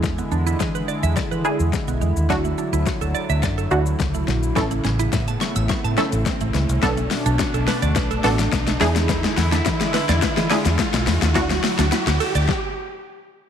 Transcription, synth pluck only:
0, 0, Header, 1, 2, 480
1, 0, Start_track
1, 0, Tempo, 566038
1, 30, Time_signature, 4, 2, 24, 8
1, 11444, End_track
2, 0, Start_track
2, 0, Title_t, "Synth pluck"
2, 0, Program_c, 0, 84
2, 0, Note_on_c, 0, 62, 88
2, 0, Note_on_c, 0, 64, 87
2, 0, Note_on_c, 0, 68, 97
2, 559, Note_off_c, 0, 62, 0
2, 560, Note_off_c, 0, 64, 0
2, 561, Note_off_c, 0, 68, 0
2, 1227, Note_on_c, 0, 62, 83
2, 1228, Note_on_c, 0, 64, 76
2, 1231, Note_on_c, 0, 68, 95
2, 1696, Note_off_c, 0, 62, 0
2, 1697, Note_off_c, 0, 64, 0
2, 1698, Note_off_c, 0, 68, 0
2, 1947, Note_on_c, 0, 62, 90
2, 1949, Note_on_c, 0, 64, 76
2, 1951, Note_on_c, 0, 66, 95
2, 2577, Note_off_c, 0, 62, 0
2, 2578, Note_off_c, 0, 64, 0
2, 2579, Note_off_c, 0, 66, 0
2, 3147, Note_on_c, 0, 62, 81
2, 3149, Note_on_c, 0, 64, 75
2, 3151, Note_on_c, 0, 66, 91
2, 3616, Note_off_c, 0, 62, 0
2, 3617, Note_off_c, 0, 64, 0
2, 3618, Note_off_c, 0, 66, 0
2, 3866, Note_on_c, 0, 61, 88
2, 3869, Note_on_c, 0, 64, 80
2, 3870, Note_on_c, 0, 69, 97
2, 4497, Note_off_c, 0, 61, 0
2, 4498, Note_off_c, 0, 64, 0
2, 4498, Note_off_c, 0, 69, 0
2, 5067, Note_on_c, 0, 61, 81
2, 5069, Note_on_c, 0, 64, 77
2, 5071, Note_on_c, 0, 69, 93
2, 5536, Note_off_c, 0, 61, 0
2, 5537, Note_off_c, 0, 64, 0
2, 5538, Note_off_c, 0, 69, 0
2, 5788, Note_on_c, 0, 59, 88
2, 5790, Note_on_c, 0, 62, 84
2, 5792, Note_on_c, 0, 69, 101
2, 6417, Note_off_c, 0, 59, 0
2, 6419, Note_off_c, 0, 62, 0
2, 6420, Note_off_c, 0, 69, 0
2, 6987, Note_on_c, 0, 59, 87
2, 6989, Note_on_c, 0, 62, 82
2, 6991, Note_on_c, 0, 69, 94
2, 7456, Note_off_c, 0, 59, 0
2, 7457, Note_off_c, 0, 62, 0
2, 7458, Note_off_c, 0, 69, 0
2, 7466, Note_on_c, 0, 62, 93
2, 7468, Note_on_c, 0, 64, 88
2, 7470, Note_on_c, 0, 68, 107
2, 8239, Note_off_c, 0, 62, 0
2, 8240, Note_off_c, 0, 64, 0
2, 8241, Note_off_c, 0, 68, 0
2, 8906, Note_on_c, 0, 62, 90
2, 8908, Note_on_c, 0, 64, 74
2, 8910, Note_on_c, 0, 68, 91
2, 9376, Note_off_c, 0, 62, 0
2, 9377, Note_off_c, 0, 64, 0
2, 9378, Note_off_c, 0, 68, 0
2, 9626, Note_on_c, 0, 62, 86
2, 9628, Note_on_c, 0, 64, 82
2, 9630, Note_on_c, 0, 66, 100
2, 10256, Note_off_c, 0, 62, 0
2, 10257, Note_off_c, 0, 64, 0
2, 10258, Note_off_c, 0, 66, 0
2, 11444, End_track
0, 0, End_of_file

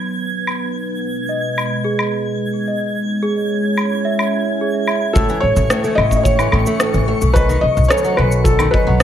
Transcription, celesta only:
0, 0, Header, 1, 2, 480
1, 0, Start_track
1, 0, Tempo, 550459
1, 653, Time_signature, 4, 2, 24, 8
1, 7874, End_track
2, 0, Start_track
2, 0, Title_t, "Celesta"
2, 0, Program_c, 0, 8
2, 843, Control_c, 0, 64, 127
2, 1125, Note_on_c, 0, 75, 63
2, 1357, Note_off_c, 0, 75, 0
2, 1608, Note_on_c, 0, 68, 87
2, 1839, Note_off_c, 0, 68, 0
2, 2334, Note_on_c, 0, 75, 65
2, 2562, Note_off_c, 0, 75, 0
2, 2583, Control_c, 0, 64, 0
2, 2740, Control_c, 0, 64, 127
2, 2813, Note_on_c, 0, 68, 87
2, 3041, Note_off_c, 0, 68, 0
2, 3530, Note_on_c, 0, 76, 79
2, 3760, Note_off_c, 0, 76, 0
2, 4020, Note_on_c, 0, 68, 69
2, 4245, Note_off_c, 0, 68, 0
2, 4255, Note_on_c, 0, 76, 66
2, 4482, Note_off_c, 0, 76, 0
2, 4500, Note_on_c, 0, 69, 94
2, 4505, Control_c, 0, 64, 0
2, 4649, Control_c, 0, 64, 127
2, 4725, Note_off_c, 0, 69, 0
2, 5209, Note_on_c, 0, 76, 73
2, 5439, Note_off_c, 0, 76, 0
2, 5685, Note_on_c, 0, 69, 104
2, 5917, Note_off_c, 0, 69, 0
2, 6409, Note_on_c, 0, 75, 81
2, 6425, Control_c, 0, 64, 0
2, 6577, Control_c, 0, 64, 127
2, 6639, Note_off_c, 0, 75, 0
2, 6888, Note_on_c, 0, 69, 107
2, 7118, Note_off_c, 0, 69, 0
2, 7614, Note_on_c, 0, 75, 76
2, 7841, Note_off_c, 0, 75, 0
2, 7874, End_track
0, 0, End_of_file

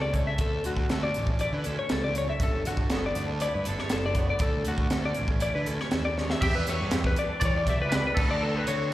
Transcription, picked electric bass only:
0, 0, Header, 1, 2, 480
1, 0, Start_track
1, 0, Key_signature, 2, "major"
1, 0, Tempo, 500835
1, 385, Time_signature, 4, 2, 24, 8
1, 8561, End_track
2, 0, Start_track
2, 0, Title_t, "Picked electric bass"
2, 0, Program_c, 0, 34
2, 0, Note_on_c, 0, 37, 77
2, 305, Note_off_c, 0, 37, 0
2, 371, Note_on_c, 0, 38, 77
2, 572, Note_off_c, 0, 38, 0
2, 623, Note_on_c, 0, 38, 78
2, 819, Note_off_c, 0, 38, 0
2, 871, Note_on_c, 0, 38, 91
2, 1064, Note_off_c, 0, 38, 0
2, 1117, Note_on_c, 0, 33, 71
2, 1405, Note_off_c, 0, 33, 0
2, 1460, Note_on_c, 0, 50, 78
2, 1560, Note_off_c, 0, 50, 0
2, 1599, Note_on_c, 0, 38, 75
2, 1691, Note_off_c, 0, 38, 0
2, 1833, Note_on_c, 0, 37, 81
2, 2221, Note_off_c, 0, 37, 0
2, 2303, Note_on_c, 0, 31, 76
2, 2500, Note_off_c, 0, 31, 0
2, 2546, Note_on_c, 0, 31, 84
2, 2742, Note_off_c, 0, 31, 0
2, 2792, Note_on_c, 0, 31, 84
2, 2986, Note_off_c, 0, 31, 0
2, 3019, Note_on_c, 0, 38, 69
2, 3315, Note_off_c, 0, 38, 0
2, 3404, Note_on_c, 0, 43, 89
2, 3496, Note_off_c, 0, 43, 0
2, 3518, Note_on_c, 0, 31, 75
2, 3612, Note_off_c, 0, 31, 0
2, 3756, Note_on_c, 0, 30, 74
2, 4143, Note_off_c, 0, 30, 0
2, 4214, Note_on_c, 0, 38, 85
2, 4416, Note_off_c, 0, 38, 0
2, 4467, Note_on_c, 0, 38, 77
2, 4663, Note_off_c, 0, 38, 0
2, 4702, Note_on_c, 0, 38, 82
2, 4900, Note_off_c, 0, 38, 0
2, 4967, Note_on_c, 0, 33, 76
2, 5253, Note_off_c, 0, 33, 0
2, 5323, Note_on_c, 0, 50, 90
2, 5415, Note_off_c, 0, 50, 0
2, 5453, Note_on_c, 0, 38, 83
2, 5541, Note_off_c, 0, 38, 0
2, 5687, Note_on_c, 0, 39, 81
2, 6070, Note_off_c, 0, 39, 0
2, 6148, Note_on_c, 0, 40, 96
2, 6246, Note_off_c, 0, 40, 0
2, 6278, Note_on_c, 0, 40, 70
2, 6372, Note_off_c, 0, 40, 0
2, 6410, Note_on_c, 0, 40, 75
2, 6499, Note_off_c, 0, 40, 0
2, 6520, Note_on_c, 0, 43, 79
2, 6613, Note_off_c, 0, 43, 0
2, 6640, Note_on_c, 0, 40, 91
2, 6830, Note_off_c, 0, 40, 0
2, 7109, Note_on_c, 0, 52, 81
2, 7206, Note_off_c, 0, 52, 0
2, 7229, Note_on_c, 0, 40, 91
2, 7326, Note_off_c, 0, 40, 0
2, 7350, Note_on_c, 0, 35, 93
2, 7446, Note_off_c, 0, 35, 0
2, 7480, Note_on_c, 0, 37, 91
2, 7669, Note_off_c, 0, 37, 0
2, 7827, Note_on_c, 0, 38, 92
2, 8216, Note_off_c, 0, 38, 0
2, 8320, Note_on_c, 0, 50, 77
2, 8561, Note_off_c, 0, 50, 0
2, 8561, End_track
0, 0, End_of_file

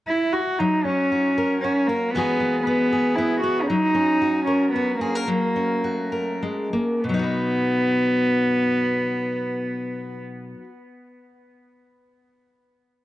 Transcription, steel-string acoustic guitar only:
0, 0, Header, 1, 2, 480
1, 0, Start_track
1, 0, Key_signature, 5, "major"
1, 0, Tempo, 516351
1, 548, Time_signature, 3, 2, 24, 8
1, 3910, Tempo, 542495
1, 5350, Tempo, 597610
1, 6310, Tempo, 627615
1, 10913, End_track
2, 0, Start_track
2, 0, Title_t, "Steel-string acoustic guitar"
2, 0, Program_c, 0, 25
2, 558, Note_on_c, 0, 54, 66
2, 788, Note_on_c, 0, 61, 53
2, 1038, Note_on_c, 0, 66, 49
2, 1280, Note_on_c, 0, 70, 54
2, 1522, Note_off_c, 0, 66, 0
2, 1526, Note_on_c, 0, 66, 55
2, 1746, Note_off_c, 0, 70, 0
2, 1757, Note_on_c, 0, 70, 55
2, 1959, Note_off_c, 0, 61, 0
2, 1964, Note_off_c, 0, 70, 0
2, 1994, Note_on_c, 0, 52, 62
2, 1995, Note_off_c, 0, 54, 0
2, 1999, Note_on_c, 0, 56, 52
2, 2003, Note_on_c, 0, 59, 53
2, 2011, Note_off_c, 0, 66, 0
2, 2015, Note_on_c, 0, 66, 58
2, 2025, Note_on_c, 0, 68, 63
2, 2218, Note_off_c, 0, 56, 0
2, 2229, Note_on_c, 0, 56, 55
2, 2469, Note_off_c, 0, 59, 0
2, 2480, Note_on_c, 0, 59, 54
2, 2708, Note_off_c, 0, 68, 0
2, 2719, Note_on_c, 0, 68, 57
2, 2946, Note_off_c, 0, 59, 0
2, 2958, Note_on_c, 0, 59, 58
2, 3181, Note_off_c, 0, 59, 0
2, 3193, Note_on_c, 0, 59, 55
2, 3400, Note_off_c, 0, 56, 0
2, 3403, Note_off_c, 0, 52, 0
2, 3430, Note_off_c, 0, 59, 0
2, 3434, Note_off_c, 0, 68, 0
2, 3437, Note_on_c, 0, 54, 66
2, 3668, Note_on_c, 0, 61, 57
2, 3917, Note_off_c, 0, 66, 0
2, 3920, Note_on_c, 0, 66, 54
2, 4146, Note_on_c, 0, 70, 52
2, 4393, Note_off_c, 0, 66, 0
2, 4397, Note_on_c, 0, 66, 58
2, 4616, Note_off_c, 0, 70, 0
2, 4623, Note_on_c, 0, 68, 62
2, 4747, Note_off_c, 0, 68, 0
2, 4747, Note_on_c, 0, 70, 47
2, 4826, Note_off_c, 0, 61, 0
2, 4852, Note_off_c, 0, 54, 0
2, 4856, Note_on_c, 0, 54, 66
2, 4862, Note_off_c, 0, 70, 0
2, 5107, Note_on_c, 0, 61, 57
2, 5353, Note_off_c, 0, 66, 0
2, 5356, Note_on_c, 0, 66, 53
2, 5581, Note_on_c, 0, 70, 55
2, 5818, Note_off_c, 0, 54, 0
2, 5825, Note_on_c, 0, 56, 59
2, 6064, Note_off_c, 0, 56, 0
2, 6069, Note_on_c, 0, 58, 55
2, 6279, Note_off_c, 0, 70, 0
2, 6283, Note_off_c, 0, 61, 0
2, 6283, Note_off_c, 0, 66, 0
2, 6314, Note_off_c, 0, 58, 0
2, 6317, Note_on_c, 0, 47, 59
2, 6357, Note_on_c, 0, 54, 56
2, 6394, Note_on_c, 0, 63, 55
2, 6434, Note_on_c, 0, 66, 54
2, 6467, Note_on_c, 0, 71, 50
2, 8994, Note_off_c, 0, 47, 0
2, 9034, Note_off_c, 0, 54, 0
2, 9071, Note_off_c, 0, 63, 0
2, 9110, Note_off_c, 0, 66, 0
2, 9144, Note_off_c, 0, 71, 0
2, 10913, End_track
0, 0, End_of_file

